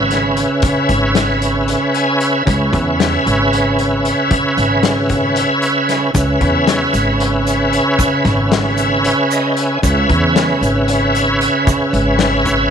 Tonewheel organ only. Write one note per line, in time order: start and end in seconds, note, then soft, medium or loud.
0.00 2.43 C#3 medium
0.00 2.43 C#4 medium
0.00 2.44 B4 medium
0.00 2.20 E5 medium
1.94 2.19 G#5 medium
2.21 2.45 E5 medium
2.46 6.10 C#3 medium
2.46 6.11 C#4 medium
2.46 6.11 B4 medium
2.46 6.12 E5 medium
6.13 9.78 C#3 medium
6.13 9.79 C#4 medium
6.13 9.80 B4 medium
6.17 9.80 E5 medium
9.31 9.55 D#5 medium
9.57 9.81 G#5 medium
9.82 12.70 C#3 medium
9.82 12.70 C#4 medium
9.82 12.70 B4 medium
9.82 12.70 E5 medium